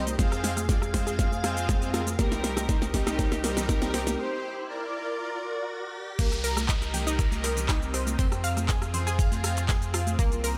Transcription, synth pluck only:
0.19 C4
0.44 F5
0.69 G#4
0.94 C5
1.07 G#4
1.19 F5
1.44 F5
1.69 G#4
1.94 F4
2.19 A#3
2.44 A#4
2.69 D#4
2.94 G4
3.07 D#4
3.19 A#4
3.44 A#4
3.69 D#4
3.94 C4
6.19 A#3 A#4
6.44 A#4 A#5
6.69 D#4 D#5
6.94 G4 G5
7.07 D#4 D#5
7.19 A#4 A#5
7.44 A#4 A#5
7.69 D#4 D#5
7.94 C4 C5
8.19 C4 C5
8.44 F5 F6
8.69 G#4 G#5
8.94 C5 C6
9.07 G#4 G#5
9.19 F5 F6
9.44 F5 F6
9.69 G#4 G#5
9.94 F4 F5
10.19 A#3 A#4
10.44 A#4 A#5

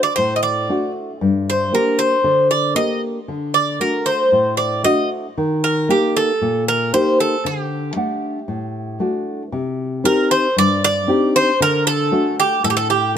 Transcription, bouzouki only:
0.03 D5
0.16 C5
0.36 D#5
0.43 D5
1.50 C5
1.75 A#4
1.99 C5
2.51 D5
2.76 D#5
3.54 D5
3.81 A#4
4.06 C5
4.57 D5
4.84 D#5
5.64 A#4
5.91 G4
6.17 A4
6.68 A#4
6.94 C5
7.20 A4
7.46 G4
10.05 A#4
10.31 C5
10.58 D5
10.84 D5
11.36 C5
11.62 A#4
11.87 A4
12.40 G4
12.64 A4
12.70 G4
12.77 A4
12.90 G4

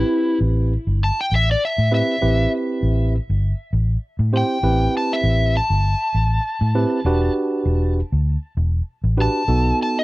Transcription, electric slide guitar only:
Already playing: E4
1.04 A5
1.21 G5
1.35 E5
1.51 D5
1.65 E5
1.95 E5
4.37 G5
4.97 A5
5.13 E5
5.57 A5
9.22 A5
9.83 A5
9.99 D#5

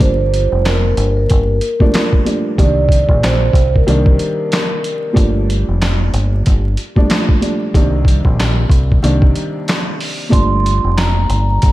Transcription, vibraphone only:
0.01 C5
0.65 A#4
1.17 A#4
2.59 D5
3.23 C5
3.74 A#4
10.33 C6
10.97 A#5
11.49 A#5

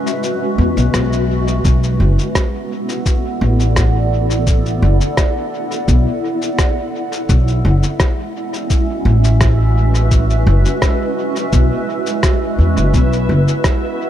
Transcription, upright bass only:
0.58 E2
0.77 B1
0.94 B1
1.65 B1
2.00 F#1
3.41 A1
4.82 F#1
5.88 B1
7.29 B1
7.65 F#1
9.05 A1
10.47 F#1
11.53 B1
12.59 E2
12.77 F#1
12.94 B1
13.29 F#1

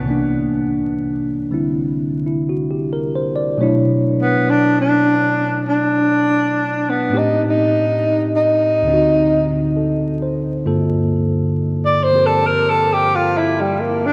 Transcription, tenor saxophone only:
4.22 B3
4.50 D4
4.81 D4
5.69 D4
6.89 B3
7.17 D#4
7.49 D#4
8.36 D#4
11.85 D5
12.04 C5
12.26 A4
12.47 A#4
12.70 A4
12.93 G4
13.15 F4
13.38 E4
13.61 G3
13.80 A#3
14.06 D4

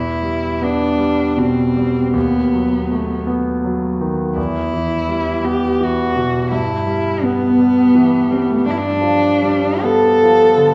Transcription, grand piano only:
Already playing: E2
0.22 G3
0.62 B3
0.98 G3
1.37 B2
1.76 G3
2.14 D#2
2.53 F#3
2.90 A3
3.27 B3
3.64 F#3
4.01 D#3
4.36 E2
4.74 E3
5.08 G3
5.45 B3
5.80 E3
6.16 B2
6.52 G2
6.87 G3
7.24 B3
7.59 G3
7.95 E3
8.30 G3
8.66 G2
9.01 F3
9.42 G3
9.84 B3
10.23 F3
10.56 D3

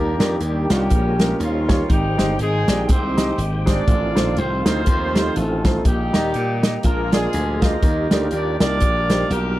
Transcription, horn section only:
Already playing: A#3 D4 G4 A#4
0.43 G3 G4
0.71 G3 C#4 G4
1.41 F3 A#3 C#4 F4
1.90 G3 C4 D#4 G4
2.40 G#3 C4 D#4 G#4
2.89 C4 D#4 G4 C5
3.68 D4 F4 D5
4.37 C4 C5
4.66 C4 D#4 F4 C5
5.36 A3 C4 D#4 A4
5.86 G3 A#3 D#4 G4
6.64 G3 G4
6.84 A#3 D4 F4 A#4
7.14 G#3 D4 F4 G#4
7.63 D#4 G4 A#4 D#5
8.33 D4 D5
8.60 D4 G4 A#4 D5
9.31 A#3 D4 G4 A#4

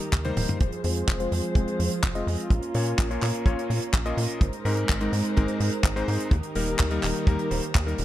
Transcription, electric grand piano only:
0.25 G3 A#3 D#4 C5
0.84 G#3 C4 F4 C5
1.20 G#3 C4 F4 C5
1.56 G#3 C4 F4 C5
2.15 G#3 C4 F4 D#5
2.75 A#2 A#3 C#4 F4 C#5
3.10 A#2 A#3 C#4 F4 C#5
3.46 A#2 A#3 C#4 F4 C#5
4.06 A#2 A#3 C#4 F4 D#5
4.65 G#2 G#3 C4 D#4 A#4
5.01 G#2 G#3 C4 D#4 A#4
5.36 G#2 G#3 C4 D#4 A#4
5.96 G#2 G#3 C4 D#4 C5
6.56 G3 A#3 D#4 A#4
6.91 G3 A#3 D#4 A#4
7.27 G3 A#3 D#4 A#4
7.51 G3 A#3 D#4 C5
7.87 G3 A#3 D#4 A#4

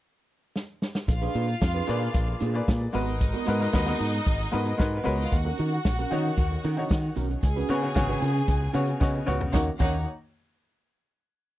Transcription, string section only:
1.08 F4 F5
2.94 D#4 D#5
4.97 B3 B4
5.06 C#4 C#5
5.16 D#4 D#5
5.25 F4 F5
5.33 F#4 F#5
7.42 G#4 G#5
9.53 D#4 C#5 F#5
9.79 D#4 C#5 F#5

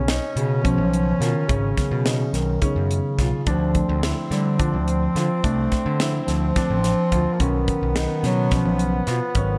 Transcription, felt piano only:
0.08 D#4
0.64 C#4
1.21 F4
1.49 C#4
2.05 D#4
2.62 C#4
3.19 F4
3.47 D4
4.03 E4
4.59 D4
5.16 F4
5.44 D4
6.00 E4
6.56 D4
7.12 F4
7.40 C#4
7.96 D#4
8.52 C#4
9.07 F4
9.36 C#4

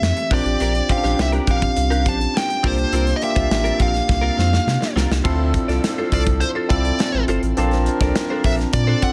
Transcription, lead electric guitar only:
Already playing: E5
0.34 D5
0.92 F5
1.21 E5
1.51 F5
2.08 A5
2.37 G5
2.66 C5
3.16 D#5
3.23 E5
3.82 F5
6.13 D5
6.40 C5
6.69 D5
8.45 E5
8.73 D5
9.03 F#5

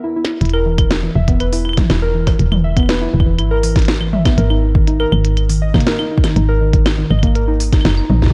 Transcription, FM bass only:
0.41 E1
1.16 E1
1.90 E1
2.39 E1
3.14 E1
3.39 G#1
4.38 G#1
5.12 G#1
6.36 G#1
7.10 G#1
7.85 F#1
8.10 A#1

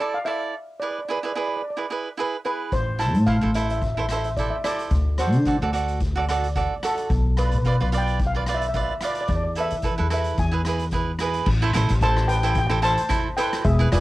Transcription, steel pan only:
0.00 D5
0.14 F5
0.25 E5
0.80 D5
0.91 D5
0.98 D5
1.05 D5
1.10 D5
1.18 D5
1.24 D5
1.32 D5
1.40 D5
1.48 D5
1.56 D5
1.62 D5
1.70 D5
2.46 B4
2.73 C5
3.00 A5
3.27 F5
3.55 E5
3.65 E5
3.71 E5
3.78 E5
3.86 E5
3.95 E5
4.01 E5
4.11 E5
4.17 E5
4.25 E5
4.37 D5
4.50 E5
4.64 D5
5.19 C5
6.85 A4
7.39 B4
7.49 B4
7.58 B4
7.64 B4
7.72 B4
7.81 B4
7.98 G5
8.27 F5
8.54 E5
8.61 E5
8.69 E5
8.74 E5
8.81 E5
8.89 E5
9.05 D5
9.12 D5
9.21 D5
9.28 D5
9.36 D5
9.44 D5
9.60 E5
10.14 E5
10.39 G#5
12.03 C5 A5
12.28 B4 G5
12.36 G5
12.44 G5
12.50 G5
12.58 G5
12.67 G5
12.83 C5 A5
13.37 B4 G5
13.65 G#4 E5
13.92 F4 D5

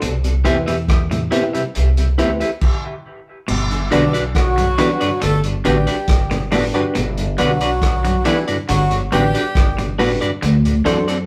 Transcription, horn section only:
3.92 D3 D4
4.35 F#3 F#4
5.22 A3 A4
5.65 G3 G4
7.38 F#3 F#4
8.25 E3 E4
8.69 F#3 F#4
9.12 G3 G4

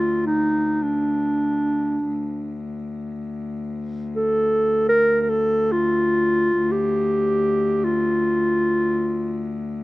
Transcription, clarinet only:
Already playing: F4
0.26 D#4
0.82 D4
4.16 A4
4.89 A#4
5.21 A#4
5.30 A4
5.72 F4
6.71 G4
7.84 F4

